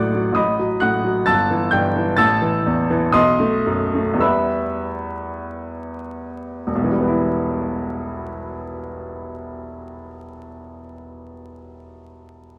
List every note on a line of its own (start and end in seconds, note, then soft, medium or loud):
0.00 0.31 A1 medium
0.00 0.28 A2 soft
0.00 0.14 F#3 soft
0.00 0.34 D5 soft
0.00 0.40 F#5 medium
0.00 0.41 C6 soft
0.00 0.37 D6 medium
0.00 0.40 F#6 medium
0.14 0.37 F#3 soft
0.32 1.23 A1 soft
0.32 0.79 D#5 soft
0.32 0.79 B5 soft
0.32 0.82 D#6 medium
0.59 0.96 F#3 soft
0.80 1.19 A2 soft
0.80 1.24 F#5 medium
0.80 1.27 F#6 medium
1.04 1.28 F#3 soft
1.26 2.16 G1 medium
1.26 1.70 A5 medium
1.26 1.69 E6 medium
1.26 1.72 A6 medium
1.50 1.87 E3 soft
1.71 2.10 G2 soft
1.71 2.16 G5 soft
1.71 2.18 G6 medium
1.96 2.19 E3 soft
2.17 3.12 A1 medium
2.17 3.10 A5 medium
2.17 3.10 E6 medium
2.17 3.14 A6 medium
2.42 2.80 E3 soft
2.66 3.05 E2 soft
2.90 3.15 E3 soft
3.12 4.19 B1 medium
3.12 4.18 D#5 medium
3.12 4.18 C6 medium
3.12 4.22 D#6 medium
3.40 3.83 A3 soft
3.67 4.11 F#2 soft
3.95 4.23 A3 soft
4.14 6.58 E2 soft
4.18 6.61 G3 soft
4.18 6.62 B3 soft
4.18 6.62 B4 soft
4.18 5.99 E5 soft
4.18 5.99 B5 medium
4.18 6.03 E6 medium
6.67 10.06 E1 soft
6.75 10.14 B1 soft
6.84 10.23 E3 soft
6.92 10.30 G3 soft
7.00 10.39 B3 soft
7.08 10.47 E4 soft